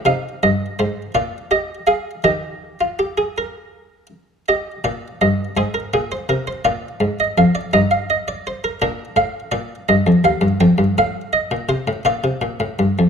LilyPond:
<<
  \new Staff \with { instrumentName = "Harpsichord" } { \time 6/8 \key ees \major \tempo 4. = 55 << { f''8 ees''8 c''8 d''8 ees''8 f''8 | ees''2~ ees''8 r8 | ees''8 d''8 ees''8 c''16 bes'16 aes'16 c''16 bes'16 c''16 | d''8. ees''16 f''16 d''16 ees''16 f''16 ees''16 d''16 c''16 bes'16 |
bes'8 f''8 d''8 ees''8 f''8 g''8 | f''8 ees''8 c''8 d''4. | } \\ { ees'4. f'8 g'8 aes'8 | g'8. f'16 g'16 aes'16 bes'4. | g'4. aes'4. | f'4. ees'4. |
d'2.~ | d'4. f'4. | } >> }
  \new Staff \with { instrumentName = "Harpsichord" } { \clef bass \time 6/8 \key ees \major c8 g,8 aes,8 bes,4. | ees2~ ees8 r8 | r8 bes,8 g,8 aes,8 bes,8 c8 | bes,8 aes,8 f,8 g,4. |
bes,8 a,8 bes,8 g,16 f,16 ees,16 g,16 f,16 g,16 | a,8. bes,16 c16 a,16 bes,16 c16 bes,16 a,16 g,16 f,16 | }
>>